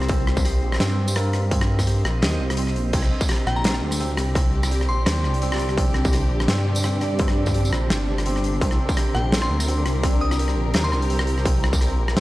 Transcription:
Already playing: C2 A#3 C4 F4 G4 C5
0.02 cross-stick
0.09 C4 D#5, kick, closed hi-hat
0.27 cross-stick
0.37 kick, tambourine
0.45 G4, cross-stick, closed hi-hat
0.63 A#1
0.72 cross-stick
0.74 cross-stick
0.76 cross-stick
0.78 G2 C4, cross-stick, snare, closed hi-hat
0.90 cross-stick
1.08 closed hi-hat, tambourine
1.16 A#3, cross-stick, closed hi-hat
1.33 cross-stick, closed hi-hat
1.51 C4, kick, closed hi-hat
1.61 cross-stick
1.79 kick, cross-stick, closed hi-hat, tambourine
1.87 G4, closed hi-hat
2.05 A#1, cross-stick
2.22 D#2 G4, cross-stick, snare, closed hi-hat
2.40 C2
2.50 cross-stick, closed hi-hat
2.57 C4, closed hi-hat
2.67 cross-stick
2.76 A#1, closed hi-hat
2.93 C2 C3 D3 C4 D4 G4 D5, kick, closed hi-hat, crash
3.03 cross-stick
3.21 kick, tambourine
3.29 G4, cross-stick, closed hi-hat
3.31 cross-stick
3.34 cross-stick
3.36 cross-stick
3.47 A#1 G5, cross-stick
3.56 A#5
3.64 C4 A#5, snare, closed hi-hat
3.74 cross-stick
3.82 D2
3.91 cross-stick, closed hi-hat, tambourine
4.00 C4, closed hi-hat
4.17 C2, cross-stick, closed hi-hat
4.35 C4, kick, cross-stick, closed hi-hat
4.63 cross-stick, tambourine
4.71 G4, closed hi-hat
4.81 cross-stick
4.89 A#1 C6
5.06 D#2 G4, cross-stick, snare, closed hi-hat
5.24 C2, cross-stick
5.34 closed hi-hat
5.42 C4, closed hi-hat
5.52 cross-stick
5.54 cross-stick
5.56 cross-stick
5.58 cross-stick, closed hi-hat
5.60 cross-stick
5.63 cross-stick
5.65 cross-stick
5.68 cross-stick
5.78 C4, kick, closed hi-hat
5.94 cross-stick
6.05 kick, tambourine
6.13 G4, cross-stick, closed hi-hat
6.31 A#1
6.40 cross-stick
6.48 G2 C4, snare, closed hi-hat
6.58 cross-stick
6.75 closed hi-hat, tambourine
6.84 C4, cross-stick, closed hi-hat
7.01 cross-stick, closed hi-hat
7.19 C4, kick, closed hi-hat
7.28 cross-stick
7.46 kick, cross-stick, tambourine
7.54 G4, closed hi-hat
7.65 tambourine
7.73 A#1, cross-stick
7.90 G1 G4, cross-stick, snare, closed hi-hat
8.18 cross-stick, closed hi-hat
8.26 C4, closed hi-hat
8.36 cross-stick
8.44 closed hi-hat
8.61 C2 C4 G4 A#4, kick, closed hi-hat
8.71 cross-stick
8.89 kick, tambourine
8.97 G4, cross-stick, closed hi-hat
9.15 A#1 G5, cross-stick
9.32 C4, snare, closed hi-hat
9.42 C6, cross-stick
9.50 D2
9.60 cross-stick, closed hi-hat, tambourine
9.68 C4, closed hi-hat
9.86 C2, cross-stick, closed hi-hat
10.03 C4, kick, cross-stick, closed hi-hat
10.21 D#6
10.31 D#6, cross-stick, tambourine
10.39 G4, closed hi-hat
10.48 cross-stick
10.57 A#1
10.74 D#2 G4, cross-stick, snare, closed hi-hat
10.84 C6
10.92 C2 C6, cross-stick
11.02 closed hi-hat
11.10 C4, closed hi-hat
11.19 cross-stick
11.27 closed hi-hat
11.38 cross-stick
11.45 C4, kick, closed hi-hat
11.64 cross-stick
11.73 kick, tambourine
11.81 G4, cross-stick, closed hi-hat
11.99 A#1
12.08 cross-stick
12.16 G2 C4, snare, closed hi-hat

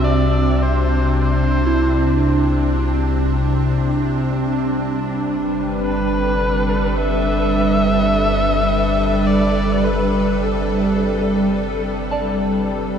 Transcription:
Already playing: C2 C3 G3 C4 D4 F#4
0.04 D5
0.63 C5
1.22 C5
1.67 E4
4.65 G1 G3
5.03 B4
5.54 A4
5.82 B4
6.97 E5
9.26 D5
9.85 B4
10.42 A4
12.11 D5 A5

